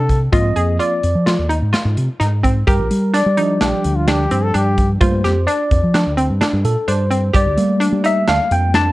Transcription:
Already playing: fingered electric bass C3, synth arpeggio sound D4, trombone A4
0.09 kick, closed hi-hat
0.32 fingered electric bass G#2, tine electric piano F3 A#3 C4 D#5, synth arpeggio sound F4, kick, closed hi-hat
0.56 fingered electric bass F2, synth arpeggio sound G#4, closed hi-hat
0.79 synth arpeggio sound F4, tine electric piano D5, closed hi-hat
1.03 fingered electric bass F2, closed hi-hat
1.15 fingered electric bass F3
1.26 synth arpeggio sound F4, snare, closed hi-hat
1.39 fingered electric bass D#2
1.49 synth arpeggio sound D#4, closed hi-hat
1.62 fingered electric bass G#2
1.73 synth arpeggio sound F4, snare, closed hi-hat
1.85 fingered electric bass G#2
1.97 fingered electric bass C3, closed hi-hat
2.20 fingered electric bass G#2, synth arpeggio sound D#4, snare, closed hi-hat
2.43 synth arpeggio sound C4, kick, closed hi-hat
2.67 fingered electric bass G2, synth arpeggio sound G4, tine electric piano A#4, kick, closed hi-hat
2.79 fingered electric bass A#1
2.91 fingered electric bass G3, closed hi-hat
3.14 synth arpeggio sound D4, tine electric piano D5, snare, closed hi-hat
3.26 fingered electric bass G3
3.37 tine electric piano F3 G3 D4, synth arpeggio sound D#4, closed hi-hat
3.61 fingered electric bass A#1, synth arpeggio sound D4, trombone G4, snare, closed hi-hat
3.84 fingered electric bass D2, closed hi-hat
3.96 trombone F4
4.07 synth arpeggio sound D4, trombone G4, snare, closed hi-hat
4.31 fingered electric bass G2, synth arpeggio sound C4, closed hi-hat
4.44 trombone A4
4.54 fingered electric bass G2, synth arpeggio sound D4, trombone G4, closed hi-hat
4.78 kick, closed hi-hat
5.00 fingered electric bass G2, tine electric piano G3 A3 A#3 C5, synth arpeggio sound F4, kick, closed hi-hat
5.24 fingered electric bass F2, synth arpeggio sound G4, snare, closed hi-hat
5.47 synth arpeggio sound D4, tine electric piano D5, closed hi-hat
5.71 fingered electric bass F2, kick, closed hi-hat
5.83 fingered electric bass F3
5.94 synth arpeggio sound D4, snare, closed hi-hat
6.07 fingered electric bass D2
6.17 synth arpeggio sound C4, closed hi-hat
6.30 fingered electric bass G2
6.41 synth arpeggio sound D4, snare, closed hi-hat
6.53 fingered electric bass G2
6.65 fingered electric bass A#2, tine electric piano A4, closed hi-hat
6.88 fingered electric bass G2, synth arpeggio sound D4, tine electric piano C5, closed hi-hat
7.11 synth arpeggio sound C4, closed hi-hat
7.34 fingered electric bass G2, synth arpeggio sound G4, tine electric piano D5, kick, closed hi-hat
7.46 fingered electric bass D2
7.57 tine electric piano G3 A3 A#3, fingered electric bass G3, closed hi-hat
7.80 synth arpeggio sound D4, closed hi-hat
7.92 fingered electric bass G3
8.04 synth arpeggio sound D#4, tine electric piano E5, closed hi-hat
8.27 fingered electric bass D2, synth arpeggio sound D4, tine electric piano F5, snare, closed hi-hat
8.51 fingered electric bass F2, tine electric piano G5, closed hi-hat
8.74 synth arpeggio sound D4, tine electric piano A5, snare, closed hi-hat

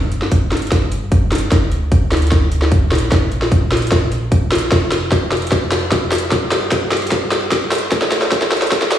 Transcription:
Already playing: analog synth bass G1
0.12 closed hi-hat
0.22 snare
0.32 kick, closed hi-hat
0.52 snare, closed hi-hat
0.57 closed hi-hat
0.62 closed hi-hat
0.67 closed hi-hat
0.72 kick, snare, closed hi-hat
0.92 closed hi-hat
1.12 kick, closed hi-hat
1.32 snare, closed hi-hat
1.35 closed hi-hat
1.38 closed hi-hat
1.52 analog synth bass D2, kick, snare, closed hi-hat
1.72 closed hi-hat
1.92 kick, closed hi-hat
2.12 snare, closed hi-hat
2.17 closed hi-hat
2.22 closed hi-hat
2.27 closed hi-hat
2.32 kick, snare, closed hi-hat
2.52 closed hi-hat
2.62 snare
2.72 kick, closed hi-hat
2.92 analog synth bass A#1, snare, closed hi-hat
2.95 closed hi-hat
2.98 closed hi-hat
3.12 kick, snare, closed hi-hat
3.32 closed hi-hat
3.42 snare
3.52 kick, closed hi-hat
3.72 snare, closed hi-hat
3.77 closed hi-hat
3.82 closed hi-hat
3.87 closed hi-hat
3.92 kick, snare, closed hi-hat
4.12 closed hi-hat
4.32 kick, closed hi-hat
4.52 snare, closed hi-hat
4.55 closed hi-hat
4.58 closed hi-hat
4.72 analog synth bass F1, kick, snare, closed hi-hat
4.92 snare, closed hi-hat
5.12 kick, snare, closed hi-hat
5.32 snare, closed hi-hat
5.37 closed hi-hat
5.42 closed hi-hat
5.47 closed hi-hat
5.52 kick, snare, closed hi-hat
5.72 snare, closed hi-hat
5.92 kick, snare, closed hi-hat
6.12 snare, closed hi-hat, open hi-hat
6.18 closed hi-hat
6.32 analog synth bass G1, kick, snare, closed hi-hat
6.52 snare, closed hi-hat
6.72 kick, snare, closed hi-hat
6.92 snare, closed hi-hat
6.97 closed hi-hat
7.02 closed hi-hat
7.07 closed hi-hat
7.12 kick, snare, closed hi-hat
7.32 snare, closed hi-hat
7.52 kick, snare, closed hi-hat
7.72 snare, closed hi-hat, open hi-hat
7.78 closed hi-hat
7.92 analog synth bass D2, kick, snare, closed hi-hat
8.02 snare
8.12 snare, closed hi-hat
8.22 snare
8.32 kick, snare, closed hi-hat
8.42 snare
8.52 snare, closed hi-hat
8.57 closed hi-hat
8.62 snare, closed hi-hat
8.67 closed hi-hat
8.72 kick, snare, closed hi-hat
8.82 snare
8.92 snare, closed hi-hat

